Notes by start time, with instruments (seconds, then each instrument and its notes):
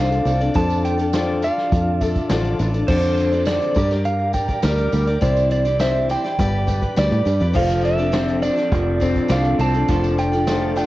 Already playing: fingered electric bass C2, steel-string acoustic guitar D3 F3 C4 D4 A4 D5, tonewheel organ F3 D4 A4, pedal steel guitar F5
0.12 closed hi-hat
0.25 fingered electric bass C2, steel-string acoustic guitar C4 D4 A4 D5, closed hi-hat, tambourine
0.40 steel-string acoustic guitar C4 D4 A4 D5, closed hi-hat
0.54 fingered electric bass F2, steel-string acoustic guitar D3 F3 D4 F4 A4 D5, tonewheel organ F3, pedal steel guitar A5, kick, closed hi-hat, tambourine
0.70 closed hi-hat, tambourine
0.85 pedal steel guitar G5, closed hi-hat, tambourine
0.98 steel-string acoustic guitar D4 F4 A4 D5, closed hi-hat, tambourine
1.13 steel-string acoustic guitar D3 F3 D4 F4 A4 D5, snare, closed hi-hat, tambourine
1.42 steel-string acoustic guitar D4 F4 A4 D5, pedal steel guitar F5, closed hi-hat, tambourine
1.57 snare
1.71 fingered electric bass F2, kick, closed hi-hat, tambourine
2.00 steel-string acoustic guitar D4 F4 A4 D5, pedal steel guitar E5, kick, closed hi-hat, tambourine
2.15 kick, closed hi-hat, tambourine
2.29 fingered electric bass A1, steel-string acoustic guitar D3 F3 D4 F4 A4 D5, snare, closed hi-hat, tambourine
2.44 closed hi-hat
2.59 fingered electric bass A1, steel-string acoustic guitar D4 F4 A4 D5, closed hi-hat, tambourine
2.74 steel-string acoustic guitar D4 F4 A4 D5, closed hi-hat
2.88 fingered electric bass F2, steel-string acoustic guitar D3 F3 C4 D4 A4 D5, pedal steel guitar C5, kick, crash, tambourine
3.02 closed hi-hat, tambourine
3.17 closed hi-hat, tambourine
3.32 steel-string acoustic guitar C4 D4 A4 D5, closed hi-hat, tambourine
3.45 steel-string acoustic guitar D3 F3 C4 D4 A4 D5, pedal steel guitar D5, snare, closed hi-hat, tambourine
3.62 closed hi-hat
3.74 fingered electric bass G2, steel-string acoustic guitar G3 G4 A#4 D5, tonewheel organ G3 A#4, kick, closed hi-hat, tambourine
3.91 steel-string acoustic guitar G4 A#4 D5, snare, closed hi-hat
4.04 pedal steel guitar F5, closed hi-hat, tambourine
4.33 steel-string acoustic guitar G3 G4 A#4 D5, pedal steel guitar G5, kick, closed hi-hat, tambourine
4.48 steel-string acoustic guitar G4 A#4 D5, kick, closed hi-hat, tambourine
4.63 fingered electric bass D2, steel-string acoustic guitar G3 G4 A#4 D5, pedal steel guitar A#4, snare, closed hi-hat, tambourine
4.78 closed hi-hat
4.92 fingered electric bass D2, steel-string acoustic guitar G3 G4 A#4 D5, closed hi-hat, tambourine
5.07 steel-string acoustic guitar G4 A#4 D5, closed hi-hat
5.21 fingered electric bass C2, tonewheel organ E3 C5, steel-string acoustic guitar C4 E4 G4 D5, pedal steel guitar D5, kick, closed hi-hat, tambourine
5.37 closed hi-hat, tambourine
5.51 pedal steel guitar D5, closed hi-hat, tambourine
5.65 steel-string acoustic guitar E4 G4 D5, closed hi-hat, tambourine
5.79 steel-string acoustic guitar C4 E4 G4 D5, pedal steel guitar E5, snare, closed hi-hat, tambourine
5.95 tambourine
6.09 steel-string acoustic guitar C4 E4 G4 D5, pedal steel guitar G5, closed hi-hat, tambourine
6.24 steel-string acoustic guitar E4 G4 D5, snare, tambourine
6.39 fingered electric bass G1, steel-string acoustic guitar G3 G4 B4 D5, tonewheel organ G3 B4, kick, closed hi-hat, tambourine
6.67 steel-string acoustic guitar G3 G4 B4 D5, kick, closed hi-hat, tambourine
6.81 steel-string acoustic guitar G4 B4 D5, kick, closed hi-hat, tambourine
6.96 fingered electric bass D2, steel-string acoustic guitar G3 G4 B4 D5, pedal steel guitar D5, snare, closed hi-hat, tambourine
7.12 fingered electric bass A2, closed hi-hat, tambourine
7.25 fingered electric bass G2, steel-string acoustic guitar G3 G4 B4 D5, closed hi-hat, tambourine
7.40 fingered electric bass F2, steel-string acoustic guitar G4 B4 D5, closed hi-hat, tambourine
7.53 fingered electric bass F1, steel-string acoustic guitar D3 F3 C4 D4 A4 D5, tonewheel organ F3 A4, pedal steel guitar F5, kick, tambourine, crash
7.70 closed hi-hat, tambourine
7.84 clean electric guitar F3, pedal steel guitar E5, closed hi-hat, tambourine
7.98 steel-string acoustic guitar C4 D4 A4 D5, closed hi-hat, tambourine
8.12 steel-string acoustic guitar D3 F3 C4 D4 A4 D5, snare, closed hi-hat, tambourine
8.28 closed hi-hat
8.42 steel-string acoustic guitar C4 D4 A4 D5, pedal steel guitar D5, closed hi-hat, tambourine
8.57 steel-string acoustic guitar C4 D4 A4 D5, snare, closed hi-hat
8.72 fingered electric bass F1, clean electric guitar F3, kick, closed hi-hat, tambourine
9.00 steel-string acoustic guitar C4 D4 A4 D5, kick, closed hi-hat, tambourine
9.16 kick, closed hi-hat, tambourine
9.28 fingered electric bass C2, steel-string acoustic guitar D3 F3 C4 D4 A4 D5, pedal steel guitar F5, snare, closed hi-hat, tambourine
9.45 closed hi-hat
9.59 fingered electric bass C2, steel-string acoustic guitar C4 D4 A4 D5, pedal steel guitar A5, closed hi-hat, tambourine
9.73 steel-string acoustic guitar C4 D4 A4 D5, closed hi-hat
9.88 fingered electric bass F1, steel-string acoustic guitar D3 F3 D4 F4 A4 D5, tonewheel organ A4, kick, closed hi-hat, tambourine
10.04 closed hi-hat, tambourine
10.18 clean electric guitar F3, pedal steel guitar G5, closed hi-hat, tambourine
10.32 steel-string acoustic guitar D4 F4 A4 D5, closed hi-hat, tambourine
10.47 steel-string acoustic guitar D3 F3 D4 F4 A4 D5, clean electric guitar A3, snare, closed hi-hat, tambourine
10.76 steel-string acoustic guitar D4 F4 A4 D5, pedal steel guitar F5, closed hi-hat, tambourine